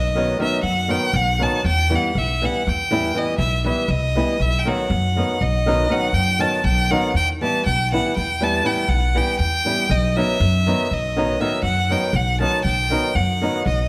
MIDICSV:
0, 0, Header, 1, 4, 480
1, 0, Start_track
1, 0, Tempo, 500000
1, 1576, Time_signature, 11, 3, 24, 8
1, 13329, End_track
2, 0, Start_track
2, 0, Title_t, "Violin"
2, 0, Program_c, 0, 40
2, 0, Note_on_c, 0, 75, 85
2, 395, Note_off_c, 0, 75, 0
2, 408, Note_on_c, 0, 76, 85
2, 601, Note_off_c, 0, 76, 0
2, 614, Note_on_c, 0, 78, 86
2, 875, Note_on_c, 0, 79, 87
2, 890, Note_off_c, 0, 78, 0
2, 1112, Note_on_c, 0, 78, 104
2, 1126, Note_off_c, 0, 79, 0
2, 1369, Note_on_c, 0, 81, 90
2, 1383, Note_off_c, 0, 78, 0
2, 1587, Note_off_c, 0, 81, 0
2, 1600, Note_on_c, 0, 79, 104
2, 1875, Note_on_c, 0, 78, 82
2, 1889, Note_off_c, 0, 79, 0
2, 2094, Note_on_c, 0, 76, 88
2, 2109, Note_off_c, 0, 78, 0
2, 2354, Note_on_c, 0, 78, 76
2, 2368, Note_off_c, 0, 76, 0
2, 2585, Note_on_c, 0, 79, 82
2, 2599, Note_off_c, 0, 78, 0
2, 3046, Note_on_c, 0, 75, 78
2, 3060, Note_off_c, 0, 79, 0
2, 3247, Note_off_c, 0, 75, 0
2, 3253, Note_on_c, 0, 76, 82
2, 3491, Note_off_c, 0, 76, 0
2, 3521, Note_on_c, 0, 76, 75
2, 3748, Note_on_c, 0, 75, 88
2, 3762, Note_off_c, 0, 76, 0
2, 4242, Note_on_c, 0, 76, 94
2, 4256, Note_off_c, 0, 75, 0
2, 4404, Note_on_c, 0, 79, 64
2, 4419, Note_off_c, 0, 76, 0
2, 4495, Note_on_c, 0, 78, 76
2, 4510, Note_off_c, 0, 79, 0
2, 5205, Note_on_c, 0, 75, 88
2, 5219, Note_off_c, 0, 78, 0
2, 5679, Note_on_c, 0, 78, 87
2, 5693, Note_off_c, 0, 75, 0
2, 5899, Note_on_c, 0, 79, 100
2, 5913, Note_off_c, 0, 78, 0
2, 6153, Note_on_c, 0, 81, 86
2, 6167, Note_off_c, 0, 79, 0
2, 6379, Note_on_c, 0, 79, 92
2, 6394, Note_off_c, 0, 81, 0
2, 6633, Note_on_c, 0, 78, 87
2, 6648, Note_off_c, 0, 79, 0
2, 6861, Note_off_c, 0, 78, 0
2, 6878, Note_on_c, 0, 79, 102
2, 6991, Note_off_c, 0, 79, 0
2, 7129, Note_on_c, 0, 81, 82
2, 7337, Note_off_c, 0, 81, 0
2, 7357, Note_on_c, 0, 79, 88
2, 7595, Note_off_c, 0, 79, 0
2, 7622, Note_on_c, 0, 78, 83
2, 7828, Note_off_c, 0, 78, 0
2, 7844, Note_on_c, 0, 79, 85
2, 8101, Note_on_c, 0, 81, 87
2, 8116, Note_off_c, 0, 79, 0
2, 8315, Note_on_c, 0, 79, 84
2, 8329, Note_off_c, 0, 81, 0
2, 8538, Note_on_c, 0, 78, 86
2, 8552, Note_off_c, 0, 79, 0
2, 8806, Note_on_c, 0, 79, 82
2, 8821, Note_off_c, 0, 78, 0
2, 9016, Note_off_c, 0, 79, 0
2, 9022, Note_on_c, 0, 79, 106
2, 9515, Note_on_c, 0, 75, 93
2, 9529, Note_off_c, 0, 79, 0
2, 9762, Note_on_c, 0, 76, 84
2, 9776, Note_off_c, 0, 75, 0
2, 10498, Note_on_c, 0, 75, 82
2, 10512, Note_off_c, 0, 76, 0
2, 10953, Note_on_c, 0, 76, 80
2, 10967, Note_off_c, 0, 75, 0
2, 11171, Note_off_c, 0, 76, 0
2, 11179, Note_on_c, 0, 78, 98
2, 11445, Note_on_c, 0, 79, 80
2, 11460, Note_off_c, 0, 78, 0
2, 11676, Note_on_c, 0, 78, 84
2, 11691, Note_off_c, 0, 79, 0
2, 11910, Note_off_c, 0, 78, 0
2, 11916, Note_on_c, 0, 81, 86
2, 12125, Note_off_c, 0, 81, 0
2, 12145, Note_on_c, 0, 79, 99
2, 12632, Note_on_c, 0, 78, 82
2, 12646, Note_off_c, 0, 79, 0
2, 13115, Note_off_c, 0, 78, 0
2, 13126, Note_on_c, 0, 75, 80
2, 13329, Note_off_c, 0, 75, 0
2, 13329, End_track
3, 0, Start_track
3, 0, Title_t, "Nylon-string guitar"
3, 0, Program_c, 1, 24
3, 147, Note_on_c, 1, 51, 62
3, 158, Note_on_c, 1, 54, 64
3, 162, Note_on_c, 1, 59, 61
3, 169, Note_on_c, 1, 63, 73
3, 338, Note_off_c, 1, 51, 0
3, 343, Note_off_c, 1, 54, 0
3, 344, Note_off_c, 1, 59, 0
3, 348, Note_off_c, 1, 63, 0
3, 374, Note_on_c, 1, 51, 62
3, 382, Note_on_c, 1, 54, 59
3, 387, Note_on_c, 1, 59, 56
3, 394, Note_on_c, 1, 63, 67
3, 563, Note_off_c, 1, 51, 0
3, 567, Note_off_c, 1, 54, 0
3, 569, Note_off_c, 1, 59, 0
3, 573, Note_off_c, 1, 63, 0
3, 848, Note_on_c, 1, 51, 60
3, 856, Note_on_c, 1, 54, 51
3, 860, Note_on_c, 1, 59, 60
3, 867, Note_on_c, 1, 63, 65
3, 1046, Note_off_c, 1, 51, 0
3, 1050, Note_off_c, 1, 54, 0
3, 1051, Note_off_c, 1, 59, 0
3, 1055, Note_off_c, 1, 63, 0
3, 1333, Note_on_c, 1, 51, 58
3, 1340, Note_on_c, 1, 54, 55
3, 1348, Note_on_c, 1, 59, 52
3, 1351, Note_on_c, 1, 63, 64
3, 1532, Note_off_c, 1, 51, 0
3, 1537, Note_off_c, 1, 54, 0
3, 1538, Note_off_c, 1, 59, 0
3, 1541, Note_off_c, 1, 63, 0
3, 1823, Note_on_c, 1, 52, 68
3, 1830, Note_on_c, 1, 55, 63
3, 1836, Note_on_c, 1, 59, 51
3, 1838, Note_on_c, 1, 64, 70
3, 2021, Note_off_c, 1, 52, 0
3, 2025, Note_off_c, 1, 55, 0
3, 2028, Note_off_c, 1, 59, 0
3, 2028, Note_off_c, 1, 64, 0
3, 2320, Note_on_c, 1, 52, 63
3, 2324, Note_on_c, 1, 55, 54
3, 2329, Note_on_c, 1, 59, 58
3, 2337, Note_on_c, 1, 64, 60
3, 2514, Note_off_c, 1, 52, 0
3, 2516, Note_off_c, 1, 55, 0
3, 2518, Note_off_c, 1, 59, 0
3, 2522, Note_off_c, 1, 64, 0
3, 2790, Note_on_c, 1, 52, 72
3, 2796, Note_on_c, 1, 55, 62
3, 2799, Note_on_c, 1, 59, 63
3, 2808, Note_on_c, 1, 64, 82
3, 2982, Note_off_c, 1, 52, 0
3, 2985, Note_off_c, 1, 55, 0
3, 2985, Note_off_c, 1, 59, 0
3, 2990, Note_off_c, 1, 64, 0
3, 3020, Note_on_c, 1, 52, 64
3, 3029, Note_on_c, 1, 55, 61
3, 3034, Note_on_c, 1, 59, 57
3, 3040, Note_on_c, 1, 64, 71
3, 3208, Note_off_c, 1, 52, 0
3, 3213, Note_off_c, 1, 55, 0
3, 3215, Note_off_c, 1, 59, 0
3, 3218, Note_off_c, 1, 64, 0
3, 3499, Note_on_c, 1, 52, 60
3, 3507, Note_on_c, 1, 55, 49
3, 3513, Note_on_c, 1, 59, 52
3, 3518, Note_on_c, 1, 64, 59
3, 3693, Note_off_c, 1, 52, 0
3, 3697, Note_off_c, 1, 55, 0
3, 3699, Note_off_c, 1, 59, 0
3, 3703, Note_off_c, 1, 64, 0
3, 3988, Note_on_c, 1, 52, 60
3, 3993, Note_on_c, 1, 55, 52
3, 4002, Note_on_c, 1, 59, 60
3, 4005, Note_on_c, 1, 64, 67
3, 4181, Note_off_c, 1, 52, 0
3, 4184, Note_off_c, 1, 55, 0
3, 4188, Note_off_c, 1, 59, 0
3, 4190, Note_off_c, 1, 64, 0
3, 4466, Note_on_c, 1, 51, 66
3, 4478, Note_on_c, 1, 54, 59
3, 4482, Note_on_c, 1, 59, 51
3, 4486, Note_on_c, 1, 63, 63
3, 4664, Note_off_c, 1, 51, 0
3, 4670, Note_off_c, 1, 54, 0
3, 4671, Note_off_c, 1, 59, 0
3, 4674, Note_off_c, 1, 63, 0
3, 4958, Note_on_c, 1, 51, 63
3, 4964, Note_on_c, 1, 54, 52
3, 4971, Note_on_c, 1, 59, 53
3, 4976, Note_on_c, 1, 63, 63
3, 5154, Note_off_c, 1, 51, 0
3, 5157, Note_off_c, 1, 54, 0
3, 5160, Note_off_c, 1, 59, 0
3, 5163, Note_off_c, 1, 63, 0
3, 5436, Note_on_c, 1, 51, 73
3, 5441, Note_on_c, 1, 54, 69
3, 5447, Note_on_c, 1, 59, 67
3, 5453, Note_on_c, 1, 63, 80
3, 5625, Note_off_c, 1, 51, 0
3, 5628, Note_off_c, 1, 54, 0
3, 5631, Note_off_c, 1, 59, 0
3, 5634, Note_off_c, 1, 63, 0
3, 5653, Note_on_c, 1, 51, 59
3, 5659, Note_on_c, 1, 54, 55
3, 5665, Note_on_c, 1, 59, 56
3, 5674, Note_on_c, 1, 63, 76
3, 5845, Note_off_c, 1, 51, 0
3, 5848, Note_off_c, 1, 54, 0
3, 5851, Note_off_c, 1, 59, 0
3, 5856, Note_off_c, 1, 63, 0
3, 6134, Note_on_c, 1, 51, 59
3, 6141, Note_on_c, 1, 54, 48
3, 6150, Note_on_c, 1, 59, 47
3, 6156, Note_on_c, 1, 63, 64
3, 6331, Note_off_c, 1, 51, 0
3, 6335, Note_off_c, 1, 54, 0
3, 6339, Note_off_c, 1, 59, 0
3, 6342, Note_off_c, 1, 63, 0
3, 6629, Note_on_c, 1, 51, 68
3, 6634, Note_on_c, 1, 54, 55
3, 6642, Note_on_c, 1, 59, 60
3, 6648, Note_on_c, 1, 63, 73
3, 6823, Note_off_c, 1, 51, 0
3, 6825, Note_off_c, 1, 54, 0
3, 6829, Note_off_c, 1, 59, 0
3, 6831, Note_off_c, 1, 63, 0
3, 7116, Note_on_c, 1, 52, 58
3, 7121, Note_on_c, 1, 55, 56
3, 7128, Note_on_c, 1, 59, 50
3, 7135, Note_on_c, 1, 64, 61
3, 7310, Note_off_c, 1, 52, 0
3, 7311, Note_off_c, 1, 55, 0
3, 7316, Note_off_c, 1, 59, 0
3, 7319, Note_off_c, 1, 64, 0
3, 7605, Note_on_c, 1, 52, 59
3, 7613, Note_on_c, 1, 55, 48
3, 7617, Note_on_c, 1, 59, 51
3, 7623, Note_on_c, 1, 64, 68
3, 7798, Note_off_c, 1, 52, 0
3, 7802, Note_off_c, 1, 55, 0
3, 7805, Note_off_c, 1, 59, 0
3, 7806, Note_off_c, 1, 64, 0
3, 8070, Note_on_c, 1, 52, 75
3, 8075, Note_on_c, 1, 55, 65
3, 8082, Note_on_c, 1, 59, 66
3, 8087, Note_on_c, 1, 64, 68
3, 8263, Note_off_c, 1, 52, 0
3, 8265, Note_off_c, 1, 55, 0
3, 8269, Note_off_c, 1, 59, 0
3, 8271, Note_off_c, 1, 64, 0
3, 8292, Note_on_c, 1, 52, 64
3, 8299, Note_on_c, 1, 55, 60
3, 8302, Note_on_c, 1, 59, 61
3, 8310, Note_on_c, 1, 64, 67
3, 8486, Note_off_c, 1, 52, 0
3, 8487, Note_off_c, 1, 55, 0
3, 8492, Note_off_c, 1, 59, 0
3, 8493, Note_off_c, 1, 64, 0
3, 8783, Note_on_c, 1, 52, 67
3, 8788, Note_on_c, 1, 55, 48
3, 8791, Note_on_c, 1, 59, 53
3, 8798, Note_on_c, 1, 64, 55
3, 8976, Note_off_c, 1, 52, 0
3, 8978, Note_off_c, 1, 55, 0
3, 8980, Note_off_c, 1, 59, 0
3, 8983, Note_off_c, 1, 64, 0
3, 9263, Note_on_c, 1, 52, 57
3, 9272, Note_on_c, 1, 55, 65
3, 9276, Note_on_c, 1, 59, 58
3, 9282, Note_on_c, 1, 64, 69
3, 9460, Note_off_c, 1, 52, 0
3, 9465, Note_off_c, 1, 55, 0
3, 9465, Note_off_c, 1, 59, 0
3, 9469, Note_off_c, 1, 64, 0
3, 9754, Note_on_c, 1, 51, 52
3, 9759, Note_on_c, 1, 54, 58
3, 9768, Note_on_c, 1, 59, 56
3, 9774, Note_on_c, 1, 63, 63
3, 9949, Note_off_c, 1, 51, 0
3, 9951, Note_off_c, 1, 54, 0
3, 9956, Note_off_c, 1, 59, 0
3, 9959, Note_off_c, 1, 63, 0
3, 10237, Note_on_c, 1, 51, 62
3, 10246, Note_on_c, 1, 54, 54
3, 10251, Note_on_c, 1, 59, 63
3, 10257, Note_on_c, 1, 63, 68
3, 10433, Note_off_c, 1, 51, 0
3, 10438, Note_off_c, 1, 54, 0
3, 10441, Note_off_c, 1, 59, 0
3, 10443, Note_off_c, 1, 63, 0
3, 10717, Note_on_c, 1, 51, 69
3, 10721, Note_on_c, 1, 54, 62
3, 10728, Note_on_c, 1, 59, 58
3, 10734, Note_on_c, 1, 63, 80
3, 10906, Note_off_c, 1, 51, 0
3, 10908, Note_off_c, 1, 54, 0
3, 10912, Note_off_c, 1, 59, 0
3, 10913, Note_off_c, 1, 63, 0
3, 10944, Note_on_c, 1, 51, 68
3, 10948, Note_on_c, 1, 54, 56
3, 10954, Note_on_c, 1, 59, 63
3, 10963, Note_on_c, 1, 63, 77
3, 11130, Note_off_c, 1, 51, 0
3, 11132, Note_off_c, 1, 54, 0
3, 11136, Note_off_c, 1, 59, 0
3, 11140, Note_off_c, 1, 63, 0
3, 11420, Note_on_c, 1, 51, 48
3, 11425, Note_on_c, 1, 54, 48
3, 11435, Note_on_c, 1, 59, 56
3, 11440, Note_on_c, 1, 63, 59
3, 11613, Note_off_c, 1, 51, 0
3, 11616, Note_off_c, 1, 54, 0
3, 11621, Note_off_c, 1, 59, 0
3, 11623, Note_off_c, 1, 63, 0
3, 11902, Note_on_c, 1, 51, 64
3, 11909, Note_on_c, 1, 54, 60
3, 11915, Note_on_c, 1, 59, 58
3, 11923, Note_on_c, 1, 63, 60
3, 12098, Note_off_c, 1, 51, 0
3, 12101, Note_off_c, 1, 54, 0
3, 12105, Note_off_c, 1, 59, 0
3, 12108, Note_off_c, 1, 63, 0
3, 12385, Note_on_c, 1, 51, 58
3, 12391, Note_on_c, 1, 54, 57
3, 12398, Note_on_c, 1, 59, 54
3, 12405, Note_on_c, 1, 63, 71
3, 12582, Note_off_c, 1, 51, 0
3, 12585, Note_off_c, 1, 54, 0
3, 12589, Note_off_c, 1, 59, 0
3, 12592, Note_off_c, 1, 63, 0
3, 12878, Note_on_c, 1, 51, 62
3, 12883, Note_on_c, 1, 54, 60
3, 12890, Note_on_c, 1, 59, 64
3, 12895, Note_on_c, 1, 63, 68
3, 13072, Note_off_c, 1, 51, 0
3, 13074, Note_off_c, 1, 54, 0
3, 13078, Note_off_c, 1, 59, 0
3, 13080, Note_off_c, 1, 63, 0
3, 13329, End_track
4, 0, Start_track
4, 0, Title_t, "Upright bass"
4, 0, Program_c, 2, 32
4, 0, Note_on_c, 2, 35, 82
4, 322, Note_off_c, 2, 35, 0
4, 604, Note_on_c, 2, 42, 76
4, 896, Note_off_c, 2, 42, 0
4, 1089, Note_on_c, 2, 35, 94
4, 1381, Note_off_c, 2, 35, 0
4, 1580, Note_on_c, 2, 40, 86
4, 1872, Note_off_c, 2, 40, 0
4, 2066, Note_on_c, 2, 35, 80
4, 2358, Note_off_c, 2, 35, 0
4, 2563, Note_on_c, 2, 40, 82
4, 2975, Note_off_c, 2, 40, 0
4, 3248, Note_on_c, 2, 35, 88
4, 3540, Note_off_c, 2, 35, 0
4, 3727, Note_on_c, 2, 36, 86
4, 4021, Note_off_c, 2, 36, 0
4, 4221, Note_on_c, 2, 35, 79
4, 4513, Note_off_c, 2, 35, 0
4, 4703, Note_on_c, 2, 42, 92
4, 4997, Note_off_c, 2, 42, 0
4, 5193, Note_on_c, 2, 35, 86
4, 5608, Note_off_c, 2, 35, 0
4, 5884, Note_on_c, 2, 42, 77
4, 6177, Note_off_c, 2, 42, 0
4, 6374, Note_on_c, 2, 35, 88
4, 6666, Note_off_c, 2, 35, 0
4, 6853, Note_on_c, 2, 40, 81
4, 7148, Note_off_c, 2, 40, 0
4, 7356, Note_on_c, 2, 35, 84
4, 7646, Note_off_c, 2, 35, 0
4, 7841, Note_on_c, 2, 40, 75
4, 8254, Note_off_c, 2, 40, 0
4, 8529, Note_on_c, 2, 35, 78
4, 8821, Note_off_c, 2, 35, 0
4, 9014, Note_on_c, 2, 40, 83
4, 9307, Note_off_c, 2, 40, 0
4, 9500, Note_on_c, 2, 35, 86
4, 9793, Note_off_c, 2, 35, 0
4, 9986, Note_on_c, 2, 42, 98
4, 10279, Note_off_c, 2, 42, 0
4, 10475, Note_on_c, 2, 35, 75
4, 10890, Note_off_c, 2, 35, 0
4, 11161, Note_on_c, 2, 42, 82
4, 11455, Note_off_c, 2, 42, 0
4, 11645, Note_on_c, 2, 35, 91
4, 11939, Note_off_c, 2, 35, 0
4, 12140, Note_on_c, 2, 35, 83
4, 12431, Note_off_c, 2, 35, 0
4, 12626, Note_on_c, 2, 42, 81
4, 12917, Note_off_c, 2, 42, 0
4, 13112, Note_on_c, 2, 35, 89
4, 13329, Note_off_c, 2, 35, 0
4, 13329, End_track
0, 0, End_of_file